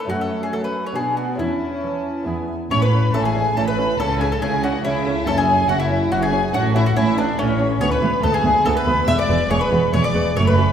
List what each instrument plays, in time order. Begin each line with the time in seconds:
0.05 lute A3 C#4 F#4
0.09 cello section F#2, lute F#2, viola section A3, violin section C#4 F#5, mandolin F#4
0.21 mandolin A4
0.43 mandolin G#4
0.52 cello section F#3, lute F#3, viola section A3, violin section C#4 F#5, mandolin A4
0.64 mandolin B4
0.86 mandolin C#5
0.92 lute B3 D4 F#4, viola section B3, mandolin G#4
0.96 cello section B2, lute B2, violin section D4 F#5
1.17 mandolin F#4, violin section G#5
1.35 cello section E2, lute C#4 E4 A4, violin section A5
1.39 lute E2, viola section C#4, mandolin E4, violin section E4
1.83 cello section E3, lute E3
2.23 lute B3 E4 G#4, viola section B3, violin section E4
2.27 cello section E2, lute E2, violin section G#5
2.71 double bass section A1, cello section A2, lute A2, viola section C#4, violin section C#5 C#6, mandolin C#5
2.80 mandolin B4, violin section B4 B5
2.92 viola section C#4, lute A4
3.13 double bass section A1, lute A2 E4, cello section A2, viola section C#4, violin section A4 A5, mandolin A4
3.24 violin section G#4 G#5, mandolin G#4
3.35 viola section C#4, lute D4
3.55 double bass section A1, cello section A2, lute A2 E4, viola section C#4, violin section A4 A5, mandolin A4
3.66 violin section B4 B5, mandolin B4
3.78 viola section C#4, lute A4
3.98 double bass section C#2, cello section C#3, lute C#3, viola section C#4, violin section A4 A5, mandolin A4
4.19 viola section C#4, violin section G#4 G#5, mandolin G#4, lute A4
4.31 violin section A4 A5, mandolin A4
4.41 double bass section C#2, cello section C#3, lute C#3 E4, viola section C#4, violin section G#4 G#5, mandolin G#4
4.63 viola section C#4, lute D4, violin section F#4 F#5, mandolin F#4
4.84 double bass section C#2, cello section C#3, lute C#3 E4, viola section C#4, violin section E4 E5, mandolin E4
5.06 viola section C#4, lute A4
5.26 double bass section F#1, cello section F#2, lute F#2, viola section C#4, violin section A4 A5, mandolin A4
5.36 mandolin G#4, violin section G#4 G#5
5.48 viola section C#4, lute C#5
5.68 double bass section F#1, cello section F#2, lute F#2 F#4, viola section C#4, violin section F#4 F#5, mandolin F#4
5.79 mandolin E4, violin section E4 E5
5.90 viola section C#4, lute E4
6.11 double bass section F#1, cello section F#2, lute F#2 F#4, viola section C#4, mandolin F#4, violin section F#4 F#5
6.21 mandolin G#4, violin section G#4 G#5
6.32 viola section C#4, lute C#5
6.53 double bass section A1, cello section A2, lute A2, viola section C#4, violin section F#4 F#5, mandolin F#4
6.74 viola section C#4, violin section E4 E5, mandolin E4, lute F#4
6.86 violin section F#4 F#5, mandolin F#4
6.96 double bass section A1, cello section A2, lute A2 C#4, viola section C#4, mandolin E4, violin section E4 E5
7.17 lute B3, viola section C#4, violin section D4 D5, mandolin D4
7.38 double bass section A1, lute A2 F#4, cello section A2, viola section C#4, violin section C#4 C#5, mandolin C#4
7.59 lute C#4, viola section C#4
7.80 cello section D2, double bass section D2, lute D2, viola section B3, violin section C#5 C#6, mandolin C#5
7.90 violin section B4 B5, mandolin B4
8.02 double bass section D2, cello section D2, lute D2 F#4, viola section B3
8.22 double bass section D2, cello section D2, lute D2 B3, viola section B3, violin section A4 A5, mandolin A4
8.33 violin section G#4 G#5, mandolin G#4
8.44 double bass section D2, cello section D2, lute D2 A3, viola section B3
8.64 double bass section D2, lute D2 F#4, cello section D2, viola section B3, violin section A4 A5, mandolin A4
8.74 violin section B4 B5, mandolin B4
8.86 lute D2 B3, double bass section D2, cello section D2, viola section B3
9.07 double bass section E1, lute E2, cello section E2, viola section G#3, violin section E5 E6, mandolin E5
9.18 violin section D5 D6, mandolin D5
9.28 double bass section E1, cello section E2, lute E2 B4, viola section G#3
9.50 double bass section E1, cello section E2, lute E2 G#4, viola section G#3, violin section C#5 C#6, mandolin C#5
9.60 violin section B4 B5, mandolin B4
9.71 double bass section E1, cello section E2, lute E2 F#4, viola section G#3
9.93 double bass section E1, cello section E2, lute E2 G#4, viola section G#3, violin section C#5 C#6, mandolin C#5
10.04 violin section D5 D6, mandolin D5
10.14 double bass section E1, cello section E2, lute E2 B4, viola section G#3
10.35 double bass section F#1, cello section F#2, lute F#2, viola section A3, violin section C#5 C#6, mandolin C#5
10.46 violin section B4 B5, mandolin B4
10.57 lute C#4 F#4